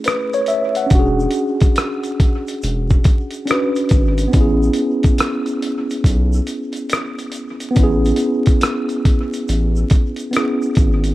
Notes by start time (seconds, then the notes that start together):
Already playing: A3 C#4 E4 G#4
0.04 B4, cross-stick, closed hi-hat, shaker
0.33 C#5, closed hi-hat, shaker
0.46 E5, closed hi-hat, shaker
0.75 F#5, closed hi-hat, shaker
0.86 C#4, closed hi-hat
0.91 E1 D4, kick, shaker
0.95 F#4
0.99 G#4
1.20 shaker
1.31 closed hi-hat, shaker
1.61 kick, closed hi-hat, shaker
1.76 cross-stick, closed hi-hat, shaker
2.03 closed hi-hat, shaker
2.20 kick, closed hi-hat
2.47 closed hi-hat, shaker
2.63 E1, closed hi-hat, shaker
2.90 kick, shaker
3.04 kick, closed hi-hat, shaker
3.31 closed hi-hat, shaker
3.45 C#4 D4, closed hi-hat, shaker
3.50 F#4 B4, cross-stick
3.76 closed hi-hat, shaker
3.89 G#1, kick, closed hi-hat, shaker
4.18 closed hi-hat, shaker
4.28 B3
4.32 A1 C#4, kick, closed hi-hat, shaker
4.36 E4
4.41 G#4
4.63 shaker
4.73 closed hi-hat, shaker
5.03 kick, closed hi-hat, shaker
5.18 cross-stick, closed hi-hat, shaker
5.46 closed hi-hat, shaker
5.62 closed hi-hat
5.90 closed hi-hat, shaker
6.04 B1, kick, closed hi-hat, shaker
6.33 shaker
6.47 closed hi-hat, shaker
6.73 closed hi-hat, shaker
6.90 cross-stick, closed hi-hat, shaker
7.19 closed hi-hat, shaker
7.32 closed hi-hat, shaker
7.60 closed hi-hat, shaker
7.71 B3
7.75 A1 C#4, kick, closed hi-hat, shaker
7.79 E4
7.83 G#4
8.05 closed hi-hat, shaker
8.16 closed hi-hat, shaker
8.46 kick, closed hi-hat, shaker
8.61 cross-stick, closed hi-hat, shaker
8.89 closed hi-hat, shaker
9.05 kick, closed hi-hat
9.33 closed hi-hat, shaker
9.49 A1, closed hi-hat, shaker
9.76 shaker
9.90 kick, closed hi-hat, shaker
10.16 closed hi-hat, shaker
10.31 B3 C#4, closed hi-hat, shaker
10.35 E4 G#4, cross-stick
10.62 shaker
10.75 G#1, kick, closed hi-hat, shaker
11.04 closed hi-hat, shaker